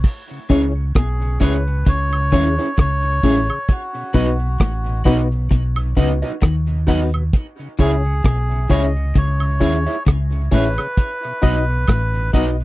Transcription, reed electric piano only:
0.50 0.71 C#4 medium
0.50 0.72 E4 medium
0.50 0.72 G#4 medium
0.50 0.72 C#5 loud
1.41 1.62 C#4 loud
1.41 1.62 E4 medium
1.41 1.63 G#4 medium
1.41 1.63 C#5 loud
2.33 2.54 C#4 medium
2.33 2.54 E4 medium
2.33 2.54 G#4 medium
2.33 2.54 C#5 loud
3.23 3.45 C#4 medium
3.23 3.45 E4 medium
3.23 3.45 G#4 medium
3.23 3.45 C#5 medium
3.50 3.57 G#4 soft
3.50 3.57 C#5 soft
4.14 4.36 B3 medium
4.14 4.36 D#4 medium
4.14 4.36 F#4 medium
4.14 4.36 B4 loud
5.05 5.27 B3 loud
5.05 5.27 D#4 medium
5.05 5.27 F#4 medium
5.05 5.27 B4 loud
5.97 6.18 B3 loud
5.97 6.18 D#4 medium
5.97 6.18 F#4 medium
5.97 6.19 B4 loud
6.88 7.09 B3 medium
6.88 7.09 D#4 medium
6.88 7.10 F#4 medium
6.88 7.10 B4 loud
7.79 8.00 C#4 medium
7.79 8.01 E4 medium
7.79 8.01 G#4 medium
7.79 8.01 C#5 loud
8.70 8.91 C#4 loud
8.70 8.92 E4 medium
8.70 8.92 G#4 medium
8.70 8.92 C#5 loud
9.60 9.82 C#4 medium
9.60 9.82 E4 medium
9.60 9.82 G#4 medium
9.60 9.83 C#5 medium
10.51 10.73 C#4 medium
10.51 10.73 E4 medium
10.51 10.74 G#4 medium
10.51 10.74 C#5 medium
10.78 10.86 G#4 soft
10.78 10.86 C#5 soft
11.42 11.64 D#4 medium
11.42 11.64 F#4 medium
11.42 11.64 B4 medium
11.42 11.64 D#5 loud
12.33 12.55 D#4 medium
12.33 12.55 F#4 medium
12.33 12.55 B4 medium
12.33 12.56 D#5 loud

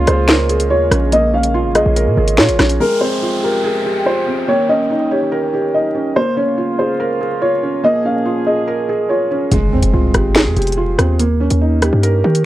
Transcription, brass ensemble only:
0.00 1.11 C#3 medium
0.00 2.63 G#3 medium
0.00 2.63 A#3 medium
0.00 1.11 F4 medium
1.12 2.63 C#3 medium
2.80 4.46 F2 medium
2.80 4.46 C3 medium
2.80 4.46 G#3 medium
2.80 6.13 G5 medium
4.48 6.14 D#2 medium
4.48 6.14 D#3 medium
4.48 6.14 C#4 medium
6.16 7.82 C#2 medium
6.16 7.82 C#3 medium
6.16 7.82 A#3 medium
6.16 7.82 F4 medium
7.84 9.50 A#2 medium
7.84 9.50 F3 medium
7.84 9.50 C#4 medium
7.84 9.50 G#4 medium

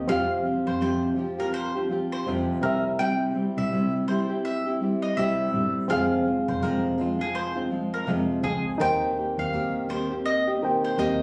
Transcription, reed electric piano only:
0.08 2.58 C4 medium
0.08 2.59 G4 medium
0.12 2.61 F5 medium
2.61 5.49 C4 medium
2.61 5.50 G4 medium
2.65 5.51 E5 medium
5.88 8.76 C4 medium
5.88 8.77 G#4 medium
5.93 8.78 F5 medium
8.78 10.58 D#4 medium
8.78 10.59 A#4 medium
8.78 10.59 C5 medium
8.83 10.60 G5 medium
10.62 11.22 D#4 medium
10.62 11.22 A#4 soft
10.62 11.22 C5 soft
10.62 11.22 G5 medium

